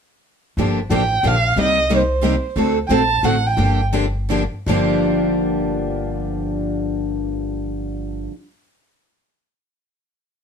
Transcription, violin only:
0.92 G5
1.27 F5
1.61 D#5
1.96 C5
2.87 G5
2.92 A5
3.25 F#5
3.47 G5

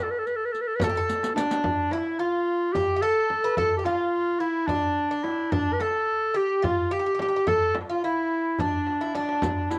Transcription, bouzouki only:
0.84 A4
0.89 G4
0.97 A4
1.37 D4
1.93 E4
2.19 F4
2.75 G4
2.96 G4
3.02 A4
3.44 B4
3.58 A4
3.79 G4
3.86 F4
4.40 E4
4.69 D4
5.11 D4
5.52 D4
5.80 A4
6.34 G4
6.62 F4
6.91 G4
6.99 G4
7.06 G4
7.15 G4
7.22 G4
7.29 G4
7.36 G4
7.47 A4
7.89 F4
8.04 E4
8.60 D4
9.01 E4
9.15 D4

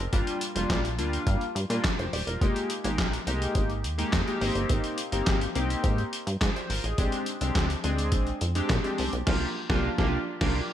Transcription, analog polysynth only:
0.12 G3 A#3 D4 F4
0.55 G3 A#3 D4 F4
0.98 G3 A#3 D4 F4
1.70 G3 A#3 D4 F4
1.99 G4 C5
2.13 G4 D5
2.27 F4 A#4
2.41 G#3 A#3 D#4 G4
2.84 G#3 A#3 D#4 G4
3.27 G#3 A#3 D#4 G4
3.98 G#3 A#3 D#4 G4
4.26 G#3 A#3 D#4 G4
4.41 A#3 C4 D#4 G4
5.12 A#3 C4 D#4 G4
5.55 A#3 C4 D#4 G4
6.41 G#4 D5
6.56 G4 C5
6.70 F4 A#4
6.84 D#4 G#4
6.98 G#3 C4 D4 G4
7.41 G#3 C4 D4 G4
7.84 G#3 C4 D4 G#4
8.55 G#3 C4 D4 G4
8.84 G#3 C4 D4 G4
9.26 A#3 D4 F4 G4
9.69 A#3 D4 F4 G4
9.98 A#3 D4 F4 G4
10.41 A#3 D4 F4 G4

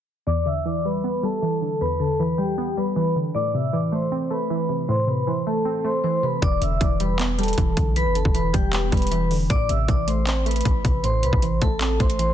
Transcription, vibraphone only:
0.27 D5 D6
0.46 E5 E6
0.66 D5 D6
0.85 B4 B5
1.24 A4 A5
1.81 B4 B5
2.00 A4 A5
2.19 B4 B5
2.38 G4 G5
2.77 B4 B5
2.96 B4 B5
3.35 D5 D6
3.54 E5 E6
3.73 D5 D6
3.93 C5 C6
4.31 B4 B5
4.88 C5 C6
5.08 B4 B5
5.27 C5 C6
5.46 A4 A5
5.85 C5 C6
6.04 C5 C6
6.23 B4 B5
6.42 D5 D6
6.62 E5 E6
6.81 D5 D6
7.00 B4 B5
7.39 A4 A5
7.97 B4 B5
8.15 A4 A5
8.35 B4 B5
8.54 G4 G5
8.93 B4 B5
9.11 B4 B5
9.50 D5 D6
9.69 E5 E6
9.88 D5 D6
10.08 C5 C6
10.47 B4 B5
11.04 C5 C6
11.24 B4 B5
11.42 C5 C6
11.62 A4 A5
12.00 C5 C6
12.19 C5 C6

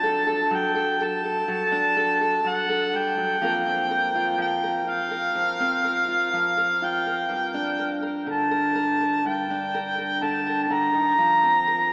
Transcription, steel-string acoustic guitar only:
Already playing: F#3 D4
0.03 A4
0.27 A4
0.51 F#3
0.75 A4
1.00 A4
1.24 A4
1.48 F#3
1.72 D4
1.97 A4
2.21 A4
2.44 F#3
2.69 A4
2.93 G3
3.18 F#3
3.41 F3 A#3 C4 F4 A#4
3.66 C4
3.91 A#4
4.15 F4
4.38 F3
4.64 A#4
4.87 F4
5.11 A#4
5.35 F3
5.60 C4
5.84 A#4
6.08 F4
6.33 F3
6.57 A#4
6.82 F4
7.06 A#4
7.29 G2
7.54 D4
7.79 A#4
8.02 A#4
8.26 D3
8.51 A#4
8.75 A#4
9.01 A#4
9.25 G2
9.50 D4
9.74 A#4
9.98 A#4
10.22 D3
10.47 A#4
10.70 D3
10.94 D#3
11.18 F3
11.43 C4
11.67 A#4

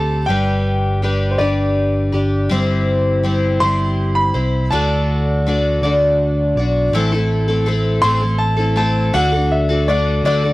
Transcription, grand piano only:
Already playing: A5
0.26 G5
1.31 C5
1.38 D5
3.60 C6
4.15 B5
4.71 A5
8.02 C6
8.38 A5
8.77 A5
9.14 F#5
9.52 E5
9.88 D5
10.26 D5

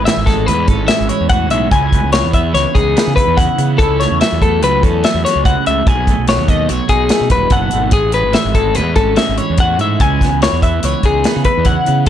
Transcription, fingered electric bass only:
0.17 G#1
0.48 E2
0.68 G#1
1.00 G#1
1.21 E2
1.52 B1
1.72 C#2
2.04 C#2
2.24 E2
2.55 C#2
2.75 C#2
3.07 C#3
3.27 E2
3.58 C#3
3.79 C#2
4.11 E2
4.32 E2
4.63 C#2
4.84 E2
5.14 E2
5.36 C#2
5.67 C#2
5.86 B1
6.18 B1
6.38 D#2
6.70 B1
6.89 B1
7.21 B2
7.31 D#1
7.51 F#1
7.73 G#1
7.92 A1
8.24 G#1
8.45 G#1
8.77 E2
8.96 G#1
9.29 G#1
9.50 E2
9.81 G#2
10.01 C#2
10.32 C#2
10.53 E2
10.84 C#2
11.04 C#2
11.36 C#3
11.57 E2
11.88 C#3

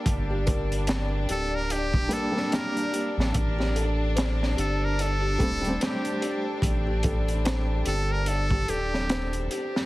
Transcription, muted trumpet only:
1.31 A4
1.55 A#4
1.72 G4
2.13 A4
2.55 A#4
4.59 A4
4.85 A#4
5.02 A4
5.84 G4
7.88 A4
8.12 A#4
8.28 A4
8.70 G4

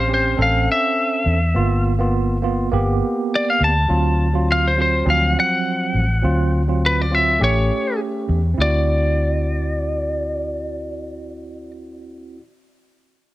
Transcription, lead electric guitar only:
0.00 C5
0.14 C5
0.42 F5
0.72 E5
3.35 D5
3.50 F5
3.64 A5
4.52 F5
4.67 C5
4.82 C5
5.10 F5
5.40 F#5
6.86 B4
7.01 D5
7.15 E5
7.44 C#5
8.62 D5

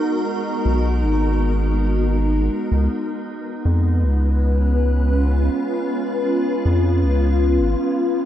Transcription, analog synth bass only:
0.65 B1
1.03 G#1
2.72 C#2
3.65 F2
4.03 C#2
6.65 F2
7.03 C#2
7.59 G#1

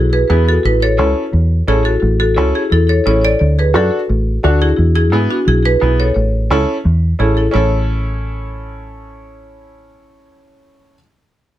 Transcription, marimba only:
Already playing: E4 G#4
0.13 G#4 B4
0.30 G#4 B4
0.48 F#4 A4
0.66 E4 B4
0.82 A4 C#5
1.68 E4 G#4
1.85 F#4 A4
2.20 F#4 A4
2.55 E4 G#4
2.72 E4 A4
2.89 A4 C#5
3.07 A4 C#5
3.25 A4 D5
3.59 G#4 B4
3.76 F#4 A4
4.44 D4 F#4
4.62 E4 G#4
4.95 E4 G#4
5.30 D4 F#4
5.48 E4 G#4
5.65 G#4 B4
6.00 A4 C#5
7.20 E4 G#4
7.37 E4 A4
7.54 C#5

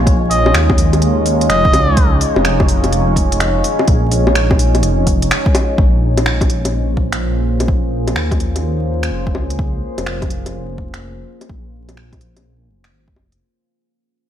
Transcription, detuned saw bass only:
Already playing: A#1
0.55 D#2
1.50 F1
1.73 C#2
2.37 F1
2.84 F1
3.88 A#1
4.83 F1
5.78 A#1
6.97 A#1
8.16 D#2
9.11 F1
9.35 C#2
9.98 F1
10.46 F1
11.49 A#1
12.69 F1
12.93 G#1
13.16 F1

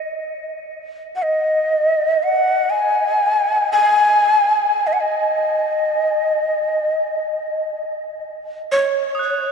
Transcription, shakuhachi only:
1.16 F#5
1.23 D#5
2.23 F#5
2.70 G#5
3.72 G#5
4.87 D#5
4.93 F#5
5.00 D#5
8.72 C#5

